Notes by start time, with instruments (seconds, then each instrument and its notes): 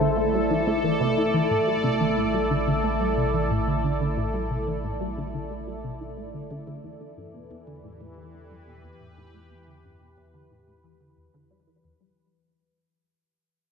Already playing: analog synth bass A1, analog synth pad A3 E4 A4 C5 D5
0.01 synth arpeggio sound D3
0.17 synth arpeggio sound A3
0.34 synth arpeggio sound G3
0.50 synth arpeggio sound E3
0.67 synth arpeggio sound A3
0.84 synth arpeggio sound E3
1.00 synth arpeggio sound C3
1.17 synth arpeggio sound E4
1.34 synth arpeggio sound E3
1.50 analog synth bass A1, synth arpeggio sound A2
1.67 synth arpeggio sound G3
1.84 synth arpeggio sound C3
2.00 synth arpeggio sound E3
2.17 synth arpeggio sound A2
2.34 synth arpeggio sound G3
2.50 synth arpeggio sound D3
2.67 synth arpeggio sound D3
2.84 synth arpeggio sound A3
3.01 synth arpeggio sound G3
3.17 synth arpeggio sound C3
3.34 synth arpeggio sound E3
3.50 synth arpeggio sound A2
3.67 synth arpeggio sound D3
3.84 synth arpeggio sound D3
4.01 synth arpeggio sound D3
4.17 synth arpeggio sound A2
4.34 synth arpeggio sound G3
4.51 synth arpeggio sound C3
4.67 synth arpeggio sound E3
4.84 synth arpeggio sound A2
5.00 synth arpeggio sound G3
5.17 synth arpeggio sound D3
5.34 synth arpeggio sound D3
5.51 synth arpeggio sound A3
5.67 synth arpeggio sound G3
5.84 synth arpeggio sound C3
6.01 synth arpeggio sound E3
6.17 synth arpeggio sound A2
6.34 synth arpeggio sound D3
6.51 synth arpeggio sound D3
6.67 synth arpeggio sound D3
6.84 synth arpeggio sound E2, analog synth bass E2, analog synth pad E3
7.01 synth arpeggio sound D3
7.17 synth arpeggio sound G2
7.34 synth arpeggio sound B2
7.39 analog synth pad B4
7.51 synth arpeggio sound E2
7.67 synth arpeggio sound D3
7.73 analog synth pad G4
7.84 synth arpeggio sound A2
8.01 synth arpeggio sound A2
8.17 synth arpeggio sound E3
8.34 synth arpeggio sound D3
8.51 synth arpeggio sound G2
8.67 synth arpeggio sound B2
8.84 synth arpeggio sound E2
9.01 synth arpeggio sound A2
9.17 synth arpeggio sound A2
9.34 synth arpeggio sound A2
9.51 synth arpeggio sound E2
9.67 synth arpeggio sound D3
9.84 synth arpeggio sound G2
10.01 synth arpeggio sound B2
10.17 synth arpeggio sound E2
10.34 synth arpeggio sound D3
10.51 synth arpeggio sound A2
10.67 synth arpeggio sound A2
10.84 synth arpeggio sound E3
11.01 synth arpeggio sound D3
11.17 synth arpeggio sound E2
11.34 synth arpeggio sound D3
11.51 synth arpeggio sound G3
11.67 synth arpeggio sound E3
11.84 synth arpeggio sound E2
12.01 synth arpeggio sound G3